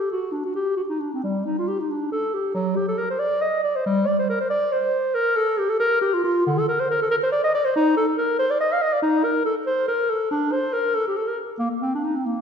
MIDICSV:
0, 0, Header, 1, 2, 480
1, 0, Start_track
1, 0, Key_signature, -2, "minor"
1, 0, Tempo, 450450
1, 1307, Time_signature, 12, 3, 24, 8
1, 1788, Tempo, 435730
1, 7068, Tempo, 427655
1, 7070, Key_signature, -2, "major"
1, 13735, End_track
2, 0, Start_track
2, 0, Title_t, "Clarinet"
2, 0, Program_c, 0, 71
2, 0, Note_on_c, 0, 67, 71
2, 109, Note_off_c, 0, 67, 0
2, 118, Note_on_c, 0, 66, 69
2, 341, Note_on_c, 0, 62, 58
2, 357, Note_off_c, 0, 66, 0
2, 458, Note_off_c, 0, 62, 0
2, 480, Note_on_c, 0, 66, 64
2, 581, Note_off_c, 0, 66, 0
2, 588, Note_on_c, 0, 67, 76
2, 810, Note_off_c, 0, 67, 0
2, 816, Note_on_c, 0, 66, 64
2, 870, Note_off_c, 0, 66, 0
2, 950, Note_on_c, 0, 63, 61
2, 1067, Note_on_c, 0, 62, 53
2, 1083, Note_off_c, 0, 63, 0
2, 1187, Note_off_c, 0, 62, 0
2, 1214, Note_on_c, 0, 60, 58
2, 1309, Note_off_c, 0, 60, 0
2, 1315, Note_on_c, 0, 55, 70
2, 1548, Note_on_c, 0, 63, 62
2, 1564, Note_off_c, 0, 55, 0
2, 1670, Note_off_c, 0, 63, 0
2, 1687, Note_on_c, 0, 65, 66
2, 1788, Note_on_c, 0, 67, 68
2, 1804, Note_off_c, 0, 65, 0
2, 1925, Note_on_c, 0, 63, 56
2, 1942, Note_off_c, 0, 67, 0
2, 2035, Note_on_c, 0, 62, 57
2, 2051, Note_off_c, 0, 63, 0
2, 2268, Note_off_c, 0, 62, 0
2, 2275, Note_on_c, 0, 69, 78
2, 2515, Note_on_c, 0, 67, 65
2, 2531, Note_off_c, 0, 69, 0
2, 2737, Note_off_c, 0, 67, 0
2, 2744, Note_on_c, 0, 54, 76
2, 2983, Note_on_c, 0, 67, 72
2, 2999, Note_off_c, 0, 54, 0
2, 3102, Note_off_c, 0, 67, 0
2, 3115, Note_on_c, 0, 69, 69
2, 3220, Note_on_c, 0, 70, 68
2, 3237, Note_off_c, 0, 69, 0
2, 3340, Note_off_c, 0, 70, 0
2, 3355, Note_on_c, 0, 72, 72
2, 3457, Note_on_c, 0, 74, 86
2, 3473, Note_off_c, 0, 72, 0
2, 3701, Note_on_c, 0, 75, 74
2, 3718, Note_off_c, 0, 74, 0
2, 3944, Note_off_c, 0, 75, 0
2, 3949, Note_on_c, 0, 74, 77
2, 4077, Note_on_c, 0, 72, 70
2, 4093, Note_off_c, 0, 74, 0
2, 4186, Note_off_c, 0, 72, 0
2, 4192, Note_on_c, 0, 55, 88
2, 4424, Note_on_c, 0, 74, 74
2, 4440, Note_off_c, 0, 55, 0
2, 4545, Note_off_c, 0, 74, 0
2, 4553, Note_on_c, 0, 72, 69
2, 4662, Note_off_c, 0, 72, 0
2, 4669, Note_on_c, 0, 70, 74
2, 4783, Note_off_c, 0, 70, 0
2, 4790, Note_on_c, 0, 72, 71
2, 4890, Note_off_c, 0, 72, 0
2, 4896, Note_on_c, 0, 74, 90
2, 5142, Note_on_c, 0, 72, 80
2, 5158, Note_off_c, 0, 74, 0
2, 5606, Note_on_c, 0, 70, 84
2, 5623, Note_off_c, 0, 72, 0
2, 5845, Note_on_c, 0, 69, 80
2, 5862, Note_off_c, 0, 70, 0
2, 6087, Note_on_c, 0, 67, 73
2, 6103, Note_off_c, 0, 69, 0
2, 6213, Note_on_c, 0, 69, 79
2, 6229, Note_off_c, 0, 67, 0
2, 6317, Note_off_c, 0, 69, 0
2, 6324, Note_on_c, 0, 70, 90
2, 6556, Note_off_c, 0, 70, 0
2, 6563, Note_on_c, 0, 67, 73
2, 6699, Note_on_c, 0, 65, 67
2, 6716, Note_off_c, 0, 67, 0
2, 6804, Note_off_c, 0, 65, 0
2, 6811, Note_on_c, 0, 65, 80
2, 7055, Note_off_c, 0, 65, 0
2, 7061, Note_on_c, 0, 50, 74
2, 7203, Note_on_c, 0, 69, 77
2, 7220, Note_off_c, 0, 50, 0
2, 7298, Note_off_c, 0, 69, 0
2, 7305, Note_on_c, 0, 70, 79
2, 7436, Note_on_c, 0, 72, 75
2, 7452, Note_off_c, 0, 70, 0
2, 7549, Note_off_c, 0, 72, 0
2, 7556, Note_on_c, 0, 70, 76
2, 7672, Note_off_c, 0, 70, 0
2, 7682, Note_on_c, 0, 69, 74
2, 7775, Note_off_c, 0, 69, 0
2, 7781, Note_on_c, 0, 70, 86
2, 7837, Note_off_c, 0, 70, 0
2, 7922, Note_on_c, 0, 72, 74
2, 7973, Note_off_c, 0, 72, 0
2, 8021, Note_on_c, 0, 74, 86
2, 8142, Note_off_c, 0, 74, 0
2, 8152, Note_on_c, 0, 75, 81
2, 8268, Note_off_c, 0, 75, 0
2, 8273, Note_on_c, 0, 74, 86
2, 8387, Note_on_c, 0, 72, 78
2, 8404, Note_off_c, 0, 74, 0
2, 8504, Note_off_c, 0, 72, 0
2, 8511, Note_on_c, 0, 63, 92
2, 8744, Note_off_c, 0, 63, 0
2, 8749, Note_on_c, 0, 69, 81
2, 8857, Note_off_c, 0, 69, 0
2, 8981, Note_on_c, 0, 70, 78
2, 9213, Note_off_c, 0, 70, 0
2, 9220, Note_on_c, 0, 72, 93
2, 9349, Note_on_c, 0, 74, 77
2, 9366, Note_off_c, 0, 72, 0
2, 9455, Note_off_c, 0, 74, 0
2, 9462, Note_on_c, 0, 75, 80
2, 9599, Note_on_c, 0, 77, 77
2, 9615, Note_off_c, 0, 75, 0
2, 9703, Note_on_c, 0, 75, 85
2, 9720, Note_off_c, 0, 77, 0
2, 9825, Note_on_c, 0, 74, 80
2, 9842, Note_off_c, 0, 75, 0
2, 9924, Note_off_c, 0, 74, 0
2, 9931, Note_on_c, 0, 63, 90
2, 10175, Note_on_c, 0, 70, 78
2, 10191, Note_off_c, 0, 63, 0
2, 10406, Note_off_c, 0, 70, 0
2, 10412, Note_on_c, 0, 69, 73
2, 10521, Note_off_c, 0, 69, 0
2, 10654, Note_on_c, 0, 72, 85
2, 10885, Note_off_c, 0, 72, 0
2, 10892, Note_on_c, 0, 70, 80
2, 11136, Note_on_c, 0, 69, 77
2, 11152, Note_off_c, 0, 70, 0
2, 11368, Note_off_c, 0, 69, 0
2, 11375, Note_on_c, 0, 62, 81
2, 11612, Note_on_c, 0, 72, 84
2, 11629, Note_off_c, 0, 62, 0
2, 11848, Note_on_c, 0, 70, 76
2, 11865, Note_off_c, 0, 72, 0
2, 12091, Note_on_c, 0, 69, 84
2, 12107, Note_off_c, 0, 70, 0
2, 12212, Note_off_c, 0, 69, 0
2, 12232, Note_on_c, 0, 67, 73
2, 12336, Note_on_c, 0, 69, 74
2, 12353, Note_off_c, 0, 67, 0
2, 12465, Note_on_c, 0, 70, 68
2, 12482, Note_off_c, 0, 69, 0
2, 12581, Note_off_c, 0, 70, 0
2, 12815, Note_on_c, 0, 58, 75
2, 12927, Note_off_c, 0, 58, 0
2, 13067, Note_on_c, 0, 60, 69
2, 13186, Note_off_c, 0, 60, 0
2, 13214, Note_on_c, 0, 62, 67
2, 13318, Note_on_c, 0, 63, 67
2, 13335, Note_off_c, 0, 62, 0
2, 13454, Note_on_c, 0, 60, 61
2, 13471, Note_off_c, 0, 63, 0
2, 13566, Note_on_c, 0, 58, 67
2, 13583, Note_off_c, 0, 60, 0
2, 13735, Note_off_c, 0, 58, 0
2, 13735, End_track
0, 0, End_of_file